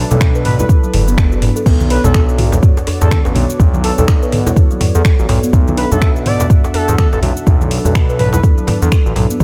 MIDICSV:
0, 0, Header, 1, 7, 480
1, 0, Start_track
1, 0, Tempo, 483871
1, 1648, Time_signature, 4, 2, 24, 8
1, 9362, End_track
2, 0, Start_track
2, 0, Title_t, "Analog synth lead"
2, 0, Program_c, 0, 81
2, 447, Note_on_c, 0, 71, 93
2, 538, Note_off_c, 0, 71, 0
2, 586, Note_on_c, 0, 71, 78
2, 651, Note_off_c, 0, 71, 0
2, 1888, Note_on_c, 0, 71, 94
2, 2001, Note_off_c, 0, 71, 0
2, 2026, Note_on_c, 0, 69, 94
2, 2210, Note_off_c, 0, 69, 0
2, 2987, Note_on_c, 0, 69, 91
2, 3170, Note_off_c, 0, 69, 0
2, 3806, Note_on_c, 0, 69, 93
2, 3897, Note_off_c, 0, 69, 0
2, 3948, Note_on_c, 0, 69, 79
2, 4012, Note_off_c, 0, 69, 0
2, 5728, Note_on_c, 0, 71, 92
2, 5841, Note_off_c, 0, 71, 0
2, 5869, Note_on_c, 0, 69, 94
2, 6051, Note_off_c, 0, 69, 0
2, 6210, Note_on_c, 0, 74, 95
2, 6409, Note_off_c, 0, 74, 0
2, 6687, Note_on_c, 0, 69, 93
2, 6887, Note_off_c, 0, 69, 0
2, 6927, Note_on_c, 0, 69, 88
2, 7018, Note_off_c, 0, 69, 0
2, 7071, Note_on_c, 0, 69, 80
2, 7133, Note_off_c, 0, 69, 0
2, 8127, Note_on_c, 0, 71, 87
2, 8218, Note_off_c, 0, 71, 0
2, 8268, Note_on_c, 0, 71, 77
2, 8332, Note_off_c, 0, 71, 0
2, 9362, End_track
3, 0, Start_track
3, 0, Title_t, "Analog synth pad"
3, 0, Program_c, 1, 89
3, 0, Note_on_c, 1, 62, 87
3, 0, Note_on_c, 1, 69, 75
3, 0, Note_on_c, 1, 71, 90
3, 1610, Note_off_c, 1, 62, 0
3, 1610, Note_off_c, 1, 69, 0
3, 1630, Note_off_c, 1, 71, 0
3, 1647, Note_on_c, 1, 66, 75
3, 1648, Note_on_c, 1, 59, 84
3, 1648, Note_on_c, 1, 73, 75
3, 1648, Note_on_c, 1, 74, 95
3, 5449, Note_off_c, 1, 59, 0
3, 5449, Note_off_c, 1, 66, 0
3, 5449, Note_off_c, 1, 74, 0
3, 5450, Note_off_c, 1, 73, 0
3, 5491, Note_on_c, 1, 62, 87
3, 5492, Note_on_c, 1, 69, 74
3, 5492, Note_on_c, 1, 76, 78
3, 5492, Note_on_c, 1, 78, 97
3, 7390, Note_off_c, 1, 62, 0
3, 7390, Note_off_c, 1, 76, 0
3, 7391, Note_off_c, 1, 78, 0
3, 7409, Note_on_c, 1, 62, 79
3, 7409, Note_on_c, 1, 71, 90
3, 9292, Note_off_c, 1, 69, 0
3, 9309, Note_off_c, 1, 62, 0
3, 9309, Note_off_c, 1, 71, 0
3, 9329, Note_on_c, 1, 59, 88
3, 9329, Note_on_c, 1, 73, 80
3, 9330, Note_on_c, 1, 66, 77
3, 9330, Note_on_c, 1, 74, 93
3, 9362, Note_off_c, 1, 59, 0
3, 9362, Note_off_c, 1, 66, 0
3, 9362, Note_off_c, 1, 73, 0
3, 9362, Note_off_c, 1, 74, 0
3, 9362, End_track
4, 0, Start_track
4, 0, Title_t, "Kalimba"
4, 0, Program_c, 2, 108
4, 108, Note_on_c, 2, 69, 76
4, 198, Note_off_c, 2, 69, 0
4, 349, Note_on_c, 2, 71, 78
4, 443, Note_off_c, 2, 71, 0
4, 587, Note_on_c, 2, 64, 102
4, 642, Note_off_c, 2, 64, 0
4, 828, Note_on_c, 2, 54, 99
4, 882, Note_off_c, 2, 54, 0
4, 1068, Note_on_c, 2, 59, 77
4, 1158, Note_off_c, 2, 59, 0
4, 1306, Note_on_c, 2, 66, 75
4, 1361, Note_off_c, 2, 66, 0
4, 1547, Note_on_c, 2, 69, 77
4, 1642, Note_off_c, 2, 69, 0
4, 1644, Note_on_c, 2, 59, 86
4, 1780, Note_off_c, 2, 59, 0
4, 1885, Note_on_c, 2, 62, 75
4, 2020, Note_off_c, 2, 62, 0
4, 2126, Note_on_c, 2, 62, 85
4, 2261, Note_off_c, 2, 62, 0
4, 2364, Note_on_c, 2, 66, 98
4, 2493, Note_off_c, 2, 66, 0
4, 2605, Note_on_c, 2, 66, 86
4, 2682, Note_off_c, 2, 66, 0
4, 2845, Note_on_c, 2, 62, 76
4, 2973, Note_off_c, 2, 62, 0
4, 3087, Note_on_c, 2, 62, 86
4, 3221, Note_off_c, 2, 62, 0
4, 3327, Note_on_c, 2, 66, 103
4, 3454, Note_off_c, 2, 66, 0
4, 3566, Note_on_c, 2, 66, 86
4, 3643, Note_off_c, 2, 66, 0
4, 3706, Note_on_c, 2, 54, 99
4, 3761, Note_off_c, 2, 54, 0
4, 3949, Note_on_c, 2, 69, 80
4, 4038, Note_off_c, 2, 69, 0
4, 4191, Note_on_c, 2, 71, 81
4, 4284, Note_off_c, 2, 71, 0
4, 4429, Note_on_c, 2, 64, 103
4, 4482, Note_off_c, 2, 64, 0
4, 4670, Note_on_c, 2, 54, 101
4, 4723, Note_off_c, 2, 54, 0
4, 4910, Note_on_c, 2, 69, 79
4, 4998, Note_off_c, 2, 69, 0
4, 5151, Note_on_c, 2, 66, 74
4, 5239, Note_off_c, 2, 66, 0
4, 5392, Note_on_c, 2, 59, 81
4, 5444, Note_off_c, 2, 59, 0
4, 5730, Note_on_c, 2, 62, 79
4, 5863, Note_off_c, 2, 62, 0
4, 5970, Note_on_c, 2, 62, 84
4, 6103, Note_off_c, 2, 62, 0
4, 6211, Note_on_c, 2, 66, 100
4, 6336, Note_off_c, 2, 66, 0
4, 6450, Note_on_c, 2, 66, 86
4, 6525, Note_off_c, 2, 66, 0
4, 6689, Note_on_c, 2, 62, 77
4, 6816, Note_off_c, 2, 62, 0
4, 6929, Note_on_c, 2, 62, 87
4, 7062, Note_off_c, 2, 62, 0
4, 7169, Note_on_c, 2, 66, 101
4, 7295, Note_off_c, 2, 66, 0
4, 7408, Note_on_c, 2, 66, 85
4, 7484, Note_off_c, 2, 66, 0
4, 7549, Note_on_c, 2, 54, 103
4, 7602, Note_off_c, 2, 54, 0
4, 7788, Note_on_c, 2, 69, 77
4, 7878, Note_off_c, 2, 69, 0
4, 8029, Note_on_c, 2, 71, 78
4, 8123, Note_off_c, 2, 71, 0
4, 8266, Note_on_c, 2, 64, 101
4, 8321, Note_off_c, 2, 64, 0
4, 8508, Note_on_c, 2, 54, 103
4, 8562, Note_off_c, 2, 54, 0
4, 8746, Note_on_c, 2, 69, 77
4, 8837, Note_off_c, 2, 69, 0
4, 8988, Note_on_c, 2, 66, 74
4, 9078, Note_off_c, 2, 66, 0
4, 9229, Note_on_c, 2, 59, 77
4, 9282, Note_off_c, 2, 59, 0
4, 9328, Note_on_c, 2, 59, 80
4, 9362, Note_off_c, 2, 59, 0
4, 9362, End_track
5, 0, Start_track
5, 0, Title_t, "Analog synth bass"
5, 0, Program_c, 3, 38
5, 107, Note_on_c, 3, 35, 92
5, 641, Note_off_c, 3, 35, 0
5, 927, Note_on_c, 3, 30, 82
5, 1483, Note_off_c, 3, 30, 0
5, 1645, Note_on_c, 3, 35, 95
5, 1962, Note_off_c, 3, 35, 0
5, 2028, Note_on_c, 3, 35, 88
5, 2562, Note_off_c, 3, 35, 0
5, 2991, Note_on_c, 3, 40, 96
5, 3060, Note_off_c, 3, 40, 0
5, 3229, Note_on_c, 3, 33, 86
5, 3299, Note_off_c, 3, 33, 0
5, 3327, Note_on_c, 3, 35, 89
5, 3427, Note_off_c, 3, 35, 0
5, 3567, Note_on_c, 3, 35, 100
5, 3883, Note_off_c, 3, 35, 0
5, 3949, Note_on_c, 3, 35, 92
5, 4482, Note_off_c, 3, 35, 0
5, 4911, Note_on_c, 3, 40, 98
5, 4980, Note_off_c, 3, 40, 0
5, 5150, Note_on_c, 3, 33, 88
5, 5219, Note_off_c, 3, 33, 0
5, 5249, Note_on_c, 3, 35, 86
5, 5348, Note_off_c, 3, 35, 0
5, 5488, Note_on_c, 3, 35, 99
5, 5803, Note_off_c, 3, 35, 0
5, 5869, Note_on_c, 3, 35, 88
5, 6402, Note_off_c, 3, 35, 0
5, 6830, Note_on_c, 3, 40, 94
5, 6899, Note_off_c, 3, 40, 0
5, 7070, Note_on_c, 3, 33, 85
5, 7140, Note_off_c, 3, 33, 0
5, 7168, Note_on_c, 3, 35, 88
5, 7268, Note_off_c, 3, 35, 0
5, 7407, Note_on_c, 3, 35, 98
5, 7723, Note_off_c, 3, 35, 0
5, 7789, Note_on_c, 3, 35, 89
5, 8322, Note_off_c, 3, 35, 0
5, 8748, Note_on_c, 3, 40, 102
5, 8819, Note_off_c, 3, 40, 0
5, 8987, Note_on_c, 3, 33, 89
5, 9058, Note_off_c, 3, 33, 0
5, 9088, Note_on_c, 3, 35, 87
5, 9188, Note_off_c, 3, 35, 0
5, 9328, Note_on_c, 3, 35, 98
5, 9362, Note_off_c, 3, 35, 0
5, 9362, End_track
6, 0, Start_track
6, 0, Title_t, "Djembe"
6, 1647, Note_on_c, 9, 63, 69
6, 1653, Note_on_c, 9, 64, 98
6, 1746, Note_off_c, 9, 63, 0
6, 1752, Note_off_c, 9, 64, 0
6, 2024, Note_on_c, 9, 63, 96
6, 2123, Note_off_c, 9, 63, 0
6, 2503, Note_on_c, 9, 62, 112
6, 2602, Note_off_c, 9, 62, 0
6, 2750, Note_on_c, 9, 62, 99
6, 2849, Note_off_c, 9, 62, 0
6, 2851, Note_on_c, 9, 63, 89
6, 2950, Note_off_c, 9, 63, 0
6, 2991, Note_on_c, 9, 62, 89
6, 3090, Note_off_c, 9, 62, 0
6, 3225, Note_on_c, 9, 62, 115
6, 3324, Note_off_c, 9, 62, 0
6, 3566, Note_on_c, 9, 63, 80
6, 3581, Note_on_c, 9, 64, 86
6, 3666, Note_off_c, 9, 63, 0
6, 3680, Note_off_c, 9, 64, 0
6, 3955, Note_on_c, 9, 63, 88
6, 4054, Note_off_c, 9, 63, 0
6, 4431, Note_on_c, 9, 62, 101
6, 4526, Note_on_c, 9, 63, 70
6, 4530, Note_off_c, 9, 62, 0
6, 4626, Note_off_c, 9, 63, 0
6, 4768, Note_on_c, 9, 63, 87
6, 4769, Note_on_c, 9, 62, 100
6, 4867, Note_off_c, 9, 63, 0
6, 4868, Note_off_c, 9, 62, 0
6, 5245, Note_on_c, 9, 62, 106
6, 5345, Note_off_c, 9, 62, 0
6, 5484, Note_on_c, 9, 64, 83
6, 5490, Note_on_c, 9, 63, 83
6, 5584, Note_off_c, 9, 64, 0
6, 5589, Note_off_c, 9, 63, 0
6, 5866, Note_on_c, 9, 63, 95
6, 5965, Note_off_c, 9, 63, 0
6, 6353, Note_on_c, 9, 62, 111
6, 6452, Note_off_c, 9, 62, 0
6, 6590, Note_on_c, 9, 62, 107
6, 6686, Note_on_c, 9, 63, 96
6, 6689, Note_off_c, 9, 62, 0
6, 6785, Note_off_c, 9, 63, 0
6, 6826, Note_on_c, 9, 62, 80
6, 6925, Note_off_c, 9, 62, 0
6, 7070, Note_on_c, 9, 62, 101
6, 7169, Note_off_c, 9, 62, 0
6, 7410, Note_on_c, 9, 63, 83
6, 7411, Note_on_c, 9, 64, 89
6, 7509, Note_off_c, 9, 63, 0
6, 7511, Note_off_c, 9, 64, 0
6, 7787, Note_on_c, 9, 63, 88
6, 7886, Note_off_c, 9, 63, 0
6, 8260, Note_on_c, 9, 62, 106
6, 8359, Note_off_c, 9, 62, 0
6, 8372, Note_on_c, 9, 63, 69
6, 8471, Note_off_c, 9, 63, 0
6, 8603, Note_on_c, 9, 62, 108
6, 8609, Note_on_c, 9, 63, 83
6, 8703, Note_off_c, 9, 62, 0
6, 8708, Note_off_c, 9, 63, 0
6, 9084, Note_on_c, 9, 62, 93
6, 9184, Note_off_c, 9, 62, 0
6, 9326, Note_on_c, 9, 64, 83
6, 9333, Note_on_c, 9, 63, 76
6, 9362, Note_off_c, 9, 63, 0
6, 9362, Note_off_c, 9, 64, 0
6, 9362, End_track
7, 0, Start_track
7, 0, Title_t, "Drums"
7, 108, Note_on_c, 9, 82, 76
7, 111, Note_on_c, 9, 64, 109
7, 206, Note_on_c, 9, 36, 110
7, 207, Note_off_c, 9, 82, 0
7, 207, Note_on_c, 9, 26, 105
7, 208, Note_on_c, 9, 82, 65
7, 210, Note_off_c, 9, 64, 0
7, 305, Note_off_c, 9, 36, 0
7, 306, Note_off_c, 9, 26, 0
7, 307, Note_off_c, 9, 82, 0
7, 348, Note_on_c, 9, 82, 40
7, 446, Note_on_c, 9, 45, 90
7, 446, Note_on_c, 9, 46, 79
7, 447, Note_off_c, 9, 82, 0
7, 454, Note_on_c, 9, 63, 64
7, 546, Note_off_c, 9, 45, 0
7, 546, Note_off_c, 9, 46, 0
7, 554, Note_off_c, 9, 63, 0
7, 588, Note_on_c, 9, 82, 81
7, 591, Note_on_c, 9, 64, 94
7, 686, Note_on_c, 9, 36, 113
7, 687, Note_off_c, 9, 82, 0
7, 687, Note_on_c, 9, 63, 62
7, 688, Note_on_c, 9, 82, 63
7, 690, Note_off_c, 9, 64, 0
7, 785, Note_off_c, 9, 36, 0
7, 786, Note_off_c, 9, 63, 0
7, 787, Note_off_c, 9, 82, 0
7, 829, Note_on_c, 9, 82, 38
7, 928, Note_on_c, 9, 45, 84
7, 928, Note_on_c, 9, 46, 97
7, 929, Note_off_c, 9, 82, 0
7, 935, Note_on_c, 9, 63, 64
7, 1027, Note_off_c, 9, 45, 0
7, 1027, Note_off_c, 9, 46, 0
7, 1034, Note_off_c, 9, 63, 0
7, 1071, Note_on_c, 9, 82, 79
7, 1166, Note_on_c, 9, 36, 114
7, 1169, Note_on_c, 9, 26, 103
7, 1170, Note_off_c, 9, 82, 0
7, 1170, Note_on_c, 9, 82, 61
7, 1265, Note_off_c, 9, 36, 0
7, 1268, Note_off_c, 9, 26, 0
7, 1269, Note_off_c, 9, 82, 0
7, 1310, Note_on_c, 9, 82, 37
7, 1409, Note_off_c, 9, 82, 0
7, 1409, Note_on_c, 9, 45, 103
7, 1409, Note_on_c, 9, 46, 87
7, 1508, Note_off_c, 9, 45, 0
7, 1508, Note_off_c, 9, 46, 0
7, 1550, Note_on_c, 9, 82, 78
7, 1646, Note_on_c, 9, 36, 117
7, 1648, Note_on_c, 9, 49, 77
7, 1649, Note_off_c, 9, 82, 0
7, 1649, Note_on_c, 9, 82, 67
7, 1745, Note_off_c, 9, 36, 0
7, 1747, Note_off_c, 9, 49, 0
7, 1748, Note_off_c, 9, 82, 0
7, 1788, Note_on_c, 9, 82, 40
7, 1793, Note_on_c, 9, 63, 82
7, 1888, Note_off_c, 9, 82, 0
7, 1888, Note_on_c, 9, 46, 96
7, 1892, Note_off_c, 9, 63, 0
7, 1987, Note_off_c, 9, 46, 0
7, 2025, Note_on_c, 9, 64, 121
7, 2029, Note_on_c, 9, 82, 80
7, 2125, Note_off_c, 9, 64, 0
7, 2126, Note_on_c, 9, 26, 109
7, 2126, Note_on_c, 9, 36, 119
7, 2127, Note_off_c, 9, 82, 0
7, 2127, Note_on_c, 9, 82, 64
7, 2226, Note_off_c, 9, 26, 0
7, 2226, Note_off_c, 9, 36, 0
7, 2226, Note_off_c, 9, 82, 0
7, 2269, Note_on_c, 9, 82, 42
7, 2366, Note_on_c, 9, 45, 87
7, 2366, Note_on_c, 9, 46, 77
7, 2366, Note_on_c, 9, 63, 61
7, 2368, Note_off_c, 9, 82, 0
7, 2465, Note_off_c, 9, 45, 0
7, 2465, Note_off_c, 9, 46, 0
7, 2465, Note_off_c, 9, 63, 0
7, 2504, Note_on_c, 9, 64, 101
7, 2509, Note_on_c, 9, 82, 81
7, 2603, Note_off_c, 9, 64, 0
7, 2606, Note_on_c, 9, 36, 124
7, 2607, Note_on_c, 9, 45, 81
7, 2608, Note_off_c, 9, 82, 0
7, 2608, Note_on_c, 9, 82, 68
7, 2706, Note_off_c, 9, 36, 0
7, 2706, Note_off_c, 9, 45, 0
7, 2707, Note_off_c, 9, 82, 0
7, 2749, Note_on_c, 9, 82, 42
7, 2847, Note_on_c, 9, 46, 90
7, 2848, Note_off_c, 9, 82, 0
7, 2946, Note_off_c, 9, 46, 0
7, 2989, Note_on_c, 9, 45, 80
7, 2990, Note_on_c, 9, 82, 78
7, 3087, Note_on_c, 9, 36, 118
7, 3088, Note_off_c, 9, 45, 0
7, 3089, Note_off_c, 9, 82, 0
7, 3089, Note_on_c, 9, 26, 107
7, 3090, Note_on_c, 9, 82, 64
7, 3092, Note_on_c, 9, 63, 107
7, 3186, Note_off_c, 9, 36, 0
7, 3188, Note_off_c, 9, 26, 0
7, 3189, Note_off_c, 9, 82, 0
7, 3191, Note_off_c, 9, 63, 0
7, 3232, Note_on_c, 9, 82, 37
7, 3321, Note_on_c, 9, 64, 111
7, 3324, Note_on_c, 9, 63, 71
7, 3329, Note_on_c, 9, 46, 86
7, 3331, Note_off_c, 9, 82, 0
7, 3420, Note_off_c, 9, 64, 0
7, 3423, Note_off_c, 9, 63, 0
7, 3428, Note_off_c, 9, 46, 0
7, 3470, Note_on_c, 9, 82, 81
7, 3567, Note_on_c, 9, 36, 126
7, 3569, Note_off_c, 9, 82, 0
7, 3570, Note_on_c, 9, 82, 72
7, 3666, Note_off_c, 9, 36, 0
7, 3669, Note_off_c, 9, 82, 0
7, 3710, Note_on_c, 9, 82, 41
7, 3713, Note_on_c, 9, 63, 98
7, 3808, Note_on_c, 9, 46, 96
7, 3809, Note_off_c, 9, 82, 0
7, 3813, Note_off_c, 9, 63, 0
7, 3907, Note_off_c, 9, 46, 0
7, 3950, Note_on_c, 9, 82, 85
7, 3953, Note_on_c, 9, 64, 120
7, 4047, Note_on_c, 9, 36, 123
7, 4048, Note_on_c, 9, 26, 112
7, 4049, Note_off_c, 9, 82, 0
7, 4049, Note_on_c, 9, 82, 70
7, 4052, Note_off_c, 9, 64, 0
7, 4147, Note_off_c, 9, 26, 0
7, 4147, Note_off_c, 9, 36, 0
7, 4148, Note_off_c, 9, 82, 0
7, 4191, Note_on_c, 9, 82, 42
7, 4290, Note_off_c, 9, 82, 0
7, 4290, Note_on_c, 9, 45, 86
7, 4290, Note_on_c, 9, 46, 77
7, 4292, Note_on_c, 9, 63, 70
7, 4389, Note_off_c, 9, 45, 0
7, 4389, Note_off_c, 9, 46, 0
7, 4391, Note_off_c, 9, 63, 0
7, 4428, Note_on_c, 9, 64, 90
7, 4431, Note_on_c, 9, 82, 89
7, 4528, Note_off_c, 9, 64, 0
7, 4528, Note_on_c, 9, 36, 124
7, 4529, Note_off_c, 9, 82, 0
7, 4529, Note_on_c, 9, 82, 66
7, 4532, Note_on_c, 9, 63, 76
7, 4627, Note_off_c, 9, 36, 0
7, 4628, Note_off_c, 9, 82, 0
7, 4631, Note_off_c, 9, 63, 0
7, 4669, Note_on_c, 9, 82, 40
7, 4762, Note_on_c, 9, 63, 57
7, 4768, Note_off_c, 9, 82, 0
7, 4769, Note_on_c, 9, 45, 81
7, 4769, Note_on_c, 9, 46, 95
7, 4861, Note_off_c, 9, 63, 0
7, 4868, Note_off_c, 9, 45, 0
7, 4868, Note_off_c, 9, 46, 0
7, 4909, Note_on_c, 9, 82, 82
7, 5008, Note_off_c, 9, 82, 0
7, 5008, Note_on_c, 9, 26, 110
7, 5008, Note_on_c, 9, 36, 123
7, 5008, Note_on_c, 9, 82, 69
7, 5107, Note_off_c, 9, 26, 0
7, 5107, Note_off_c, 9, 36, 0
7, 5107, Note_off_c, 9, 82, 0
7, 5150, Note_on_c, 9, 82, 41
7, 5248, Note_on_c, 9, 45, 97
7, 5248, Note_on_c, 9, 46, 86
7, 5250, Note_off_c, 9, 82, 0
7, 5347, Note_off_c, 9, 45, 0
7, 5347, Note_off_c, 9, 46, 0
7, 5390, Note_on_c, 9, 82, 88
7, 5488, Note_on_c, 9, 36, 127
7, 5489, Note_off_c, 9, 82, 0
7, 5489, Note_on_c, 9, 82, 68
7, 5587, Note_off_c, 9, 36, 0
7, 5588, Note_off_c, 9, 82, 0
7, 5630, Note_on_c, 9, 82, 41
7, 5636, Note_on_c, 9, 63, 99
7, 5728, Note_on_c, 9, 46, 91
7, 5729, Note_off_c, 9, 82, 0
7, 5736, Note_off_c, 9, 63, 0
7, 5827, Note_off_c, 9, 46, 0
7, 5869, Note_on_c, 9, 82, 84
7, 5871, Note_on_c, 9, 64, 111
7, 5967, Note_on_c, 9, 36, 125
7, 5968, Note_on_c, 9, 26, 112
7, 5969, Note_off_c, 9, 82, 0
7, 5969, Note_on_c, 9, 82, 69
7, 5970, Note_off_c, 9, 64, 0
7, 6066, Note_off_c, 9, 36, 0
7, 6068, Note_off_c, 9, 26, 0
7, 6068, Note_off_c, 9, 82, 0
7, 6111, Note_on_c, 9, 82, 44
7, 6208, Note_on_c, 9, 45, 85
7, 6208, Note_on_c, 9, 46, 74
7, 6209, Note_on_c, 9, 63, 67
7, 6210, Note_off_c, 9, 82, 0
7, 6307, Note_off_c, 9, 45, 0
7, 6307, Note_off_c, 9, 46, 0
7, 6308, Note_off_c, 9, 63, 0
7, 6344, Note_on_c, 9, 64, 100
7, 6349, Note_on_c, 9, 82, 89
7, 6444, Note_off_c, 9, 64, 0
7, 6448, Note_on_c, 9, 36, 127
7, 6448, Note_on_c, 9, 45, 74
7, 6449, Note_off_c, 9, 82, 0
7, 6449, Note_on_c, 9, 82, 67
7, 6547, Note_off_c, 9, 36, 0
7, 6547, Note_off_c, 9, 45, 0
7, 6548, Note_off_c, 9, 82, 0
7, 6590, Note_on_c, 9, 82, 43
7, 6687, Note_on_c, 9, 46, 88
7, 6690, Note_off_c, 9, 82, 0
7, 6786, Note_off_c, 9, 46, 0
7, 6829, Note_on_c, 9, 45, 74
7, 6829, Note_on_c, 9, 82, 85
7, 6927, Note_on_c, 9, 36, 127
7, 6928, Note_off_c, 9, 45, 0
7, 6928, Note_off_c, 9, 82, 0
7, 6929, Note_on_c, 9, 26, 108
7, 6929, Note_on_c, 9, 82, 66
7, 6933, Note_on_c, 9, 63, 109
7, 7027, Note_off_c, 9, 36, 0
7, 7028, Note_off_c, 9, 26, 0
7, 7028, Note_off_c, 9, 82, 0
7, 7033, Note_off_c, 9, 63, 0
7, 7071, Note_on_c, 9, 82, 41
7, 7166, Note_on_c, 9, 64, 107
7, 7169, Note_on_c, 9, 46, 82
7, 7169, Note_on_c, 9, 63, 67
7, 7171, Note_off_c, 9, 82, 0
7, 7265, Note_off_c, 9, 64, 0
7, 7268, Note_off_c, 9, 46, 0
7, 7268, Note_off_c, 9, 63, 0
7, 7310, Note_on_c, 9, 82, 85
7, 7407, Note_on_c, 9, 36, 124
7, 7408, Note_off_c, 9, 82, 0
7, 7408, Note_on_c, 9, 82, 69
7, 7507, Note_off_c, 9, 36, 0
7, 7508, Note_off_c, 9, 82, 0
7, 7551, Note_on_c, 9, 82, 41
7, 7555, Note_on_c, 9, 63, 85
7, 7648, Note_on_c, 9, 46, 88
7, 7650, Note_off_c, 9, 82, 0
7, 7654, Note_off_c, 9, 63, 0
7, 7748, Note_off_c, 9, 46, 0
7, 7786, Note_on_c, 9, 64, 99
7, 7791, Note_on_c, 9, 82, 84
7, 7886, Note_off_c, 9, 64, 0
7, 7887, Note_on_c, 9, 36, 125
7, 7888, Note_on_c, 9, 26, 104
7, 7889, Note_off_c, 9, 82, 0
7, 7889, Note_on_c, 9, 82, 69
7, 7986, Note_off_c, 9, 36, 0
7, 7988, Note_off_c, 9, 26, 0
7, 7988, Note_off_c, 9, 82, 0
7, 8030, Note_on_c, 9, 82, 43
7, 8128, Note_on_c, 9, 45, 85
7, 8128, Note_on_c, 9, 46, 72
7, 8129, Note_off_c, 9, 82, 0
7, 8132, Note_on_c, 9, 63, 73
7, 8227, Note_off_c, 9, 45, 0
7, 8227, Note_off_c, 9, 46, 0
7, 8231, Note_off_c, 9, 63, 0
7, 8270, Note_on_c, 9, 82, 85
7, 8274, Note_on_c, 9, 64, 89
7, 8367, Note_on_c, 9, 36, 124
7, 8368, Note_off_c, 9, 82, 0
7, 8368, Note_on_c, 9, 63, 64
7, 8368, Note_on_c, 9, 82, 65
7, 8373, Note_off_c, 9, 64, 0
7, 8466, Note_off_c, 9, 36, 0
7, 8467, Note_off_c, 9, 63, 0
7, 8467, Note_off_c, 9, 82, 0
7, 8509, Note_on_c, 9, 82, 41
7, 8608, Note_off_c, 9, 82, 0
7, 8608, Note_on_c, 9, 45, 80
7, 8608, Note_on_c, 9, 46, 86
7, 8609, Note_on_c, 9, 63, 66
7, 8707, Note_off_c, 9, 45, 0
7, 8707, Note_off_c, 9, 46, 0
7, 8708, Note_off_c, 9, 63, 0
7, 8750, Note_on_c, 9, 82, 82
7, 8847, Note_on_c, 9, 36, 122
7, 8848, Note_off_c, 9, 82, 0
7, 8848, Note_on_c, 9, 26, 106
7, 8848, Note_on_c, 9, 82, 70
7, 8946, Note_off_c, 9, 36, 0
7, 8947, Note_off_c, 9, 26, 0
7, 8948, Note_off_c, 9, 82, 0
7, 8989, Note_on_c, 9, 82, 40
7, 9088, Note_on_c, 9, 45, 92
7, 9088, Note_on_c, 9, 46, 78
7, 9089, Note_off_c, 9, 82, 0
7, 9187, Note_off_c, 9, 45, 0
7, 9187, Note_off_c, 9, 46, 0
7, 9229, Note_on_c, 9, 82, 84
7, 9327, Note_on_c, 9, 36, 127
7, 9328, Note_off_c, 9, 82, 0
7, 9328, Note_on_c, 9, 82, 65
7, 9362, Note_off_c, 9, 36, 0
7, 9362, Note_off_c, 9, 82, 0
7, 9362, End_track
0, 0, End_of_file